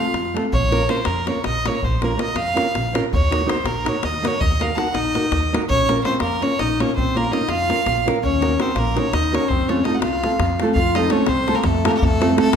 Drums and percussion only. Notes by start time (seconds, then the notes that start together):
0.06 davul high
0.14 davul high
0.25 davul high
0.37 davul high
0.53 davul low
0.72 davul high
0.81 davul high
0.89 davul high
0.97 davul high
1.05 davul high
1.27 davul high
1.44 davul high
1.55 davul high
1.66 davul high
1.75 davul high
1.83 davul low
2.02 davul high
2.11 davul high
2.19 davul high
2.28 davul high
2.36 davul high
2.57 davul high
2.75 davul high
2.86 davul high
2.95 davul high
3.04 davul high
3.13 davul low
3.32 davul high
3.41 davul high
3.49 davul high
3.57 davul high
3.66 davul high
3.86 davul high
4.03 davul high
4.14 davul high
4.25 davul high
4.34 davul high
4.41 davul low
4.51 davul high
4.61 davul high
4.70 davul high
4.78 davul high
4.95 davul high
5.05 davul high
5.15 davul high
5.32 davul high, davul low
5.43 davul high
5.55 davul high
5.62 davul high
5.70 davul low
5.89 davul high
5.97 davul high
6.05 davul high
6.13 davul high
6.20 davul high
6.42 davul high
6.59 davul high
6.70 davul high
6.80 davul high
6.89 davul high
6.98 davul low
7.17 davul high
7.25 davul high
7.33 davul high
7.41 davul high
7.49 davul high
7.70 davul high
7.86 davul high
7.98 davul high
8.08 davul high
8.16 davul high
8.24 davul low
8.42 davul high
8.51 davul high
8.60 davul high
8.68 davul high
8.76 davul high
8.97 davul high
9.13 davul high
9.25 davul high
9.35 davul high
9.44 davul high
9.50 davul low
9.61 davul high
9.69 davul high
9.77 davul high
9.85 davul high
9.94 davul high
10.02 davul high
10.13 davul high
10.24 davul high
10.32 davul high
10.40 davul high, davul low
10.50 davul high
10.60 davul high
10.69 davul high
10.76 davul low
10.95 davul high
11.03 davul high
11.10 davul high
11.26 davul high
11.37 davul high
11.48 davul high
11.64 davul high, davul low
11.74 davul high
11.85 davul high
12.02 davul low
12.22 davul high
12.30 davul high
12.38 davul high